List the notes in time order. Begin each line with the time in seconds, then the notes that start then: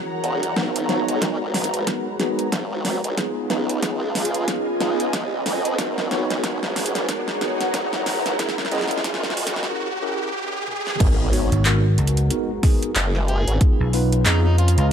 Already playing: E3 F#4 G#4 A#4 C#5 F#5 A#5, riser
0.24 E1, closed hi-hat
0.43 closed hi-hat
0.56 G#1 G#3 B3 D#4 F#4 A#4 B4, kick, snare
0.76 closed hi-hat
0.89 B3 D#4 F#4 C#5, snare, closed hi-hat
1.08 B1, closed hi-hat
1.22 B3 D#4 F#4 A#4, kick, snare, closed hi-hat
1.41 G#1
1.54 snare, open hi-hat
1.64 closed hi-hat
1.74 closed hi-hat
1.87 B3 D#4 F#4 A#4, kick, snare, closed hi-hat
2.20 B3 D#4 F#4 G#4, snare, closed hi-hat
2.39 closed hi-hat
2.52 G#1, kick, snare, closed hi-hat
2.85 snare, open hi-hat
3.04 B1, closed hi-hat
3.17 B3 C#4 D#4 F4 G#4 B4 F5, kick, snare, closed hi-hat
3.50 C#2 B3 D#4 F4 B4, snare, closed hi-hat
3.63 G#5
3.69 D#5, closed hi-hat
3.82 B3 D#4 F4 G#4, kick, snare, closed hi-hat
4.15 snare, open hi-hat
4.25 closed hi-hat
4.34 closed hi-hat
4.48 B3 D#4 F4 G#4, kick, snare, closed hi-hat
4.80 C#2 B3 D#4 F4 G#4, snare, closed hi-hat
5.00 closed hi-hat
5.13 kick, snare, closed hi-hat
5.26 C2
5.46 F2, snare, open hi-hat
5.65 closed hi-hat
5.78 G#1 G#3 B3 D#4 F#4 G#4 A#4, kick, snare, closed hi-hat
5.98 snare
6.11 B3 D#4 F#4 C#5, snare, closed hi-hat
6.22 C#5
6.30 B1, snare, closed hi-hat
6.43 B3 D#4 F#4 A#4 F#5, kick, snare, closed hi-hat
6.63 G#1, snare
6.76 snare, open hi-hat
6.86 closed hi-hat
6.95 A#5, snare, closed hi-hat
7.09 B3 D#4 F#4 A#4, kick, snare, closed hi-hat
7.28 snare
7.41 B3 D#4 F#4 G#4, snare, closed hi-hat
7.61 snare, closed hi-hat
7.74 G#1, kick, snare, closed hi-hat
7.93 snare
8.06 snare, open hi-hat
8.26 B1, snare, closed hi-hat
8.39 C#4 E4 G#4 A#4, kick, snare, closed hi-hat
8.49 snare
8.58 snare
8.65 snare
8.72 F#1 C#4 E4 G#4 D#5, snare, closed hi-hat
8.75 snare
8.78 snare
8.81 snare
8.88 snare, closed hi-hat
8.98 snare
9.04 C#4 E4 G#4 A#4, kick, snare, closed hi-hat
9.14 snare
9.24 snare
9.30 snare
9.37 open hi-hat
9.47 snare, closed hi-hat
9.56 snare
9.63 snare
9.70 C#4 E4 G#4 A#4
10.02 C#4 E4 G#4 A#4
10.68 high tom
10.87 snare
11.00 G#1 G#3 B3 D#4 F#4 A#4 B4, kick, closed hi-hat, crash, impact
11.33 B3 D#4 F#4 C#5, open hi-hat
11.52 G#1, closed hi-hat
11.65 B3 D#4 F#4 A#4, clap, closed hi-hat
11.98 C#2, closed hi-hat
12.07 closed hi-hat
12.17 closed hi-hat
12.30 B3 D#4 F#4 A#4, closed hi-hat
12.63 B3 D#4 F#4 G#4, kick, snare, open hi-hat
12.83 closed hi-hat
12.96 F#1, clap, closed hi-hat
13.15 snare
13.28 G#4, closed hi-hat
13.47 G#1, closed hi-hat
13.61 B3 C#4 D#4 F4 G#4 F5, kick, closed hi-hat
13.79 B1 D#5 G#5
13.93 B3 D#4 F4 B4 A#5, open hi-hat
14.12 closed hi-hat
14.26 F2 B3 D#4 F4 G#4, clap, closed hi-hat
14.45 D#4
14.58 F4, closed hi-hat
14.68 closed hi-hat
14.78 C#2 F4, closed hi-hat